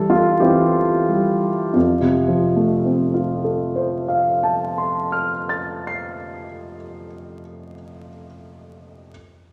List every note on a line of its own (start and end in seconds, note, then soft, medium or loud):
0.00 0.17 E3 soft
0.00 1.09 G3 soft
0.00 1.78 A4 medium
0.10 0.41 F4 medium
0.40 1.49 E3 soft
0.40 1.70 C4 soft
0.40 1.70 E4 soft
0.40 1.74 G4 medium
1.09 1.75 G3 soft
1.73 5.06 F2 soft
1.73 3.12 F4 soft
2.01 5.32 C3 soft
2.28 5.59 F3 soft
2.56 5.87 A3 soft
2.85 6.16 C4 soft
3.14 6.45 F4 soft
3.44 6.75 A4 soft
3.76 7.06 C5 soft
4.08 7.39 F5 soft
4.43 7.74 A5 soft
4.78 8.08 C6 soft
5.12 8.26 F6 soft
5.49 8.26 A6 soft
5.87 8.26 C7 soft